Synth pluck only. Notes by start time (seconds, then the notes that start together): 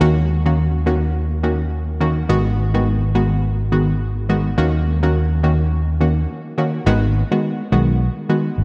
0.01 D#3 A#3 C#4 F#4
0.46 D#3 A#3 C#4 F#4
0.86 D#3 A#3 C#4 F#4
1.43 D#3 A#3 C#4 F#4
2.00 D#3 A#3 C#4 F#4
2.29 D#3 G#3 B3 F#4
2.74 D#3 G#3 B3 F#4
3.15 D#3 G#3 B3 F#4
3.72 D#3 G#3 B3 F#4
4.29 D#3 G#3 B3 F#4
4.58 D#3 A#3 C#4 F#4
5.03 D#3 A#3 C#4 F#4
5.43 D#3 A#3 C#4 F#4
6.01 D#3 A#3 C#4 F#4
6.58 D#3 A#3 C#4 F#4
6.86 D#3 G#3 B3 F#4
7.31 D#3 G#3 B3 F#4
7.72 D#3 G#3 B3 F#4
8.29 D#3 G#3 B3 F#4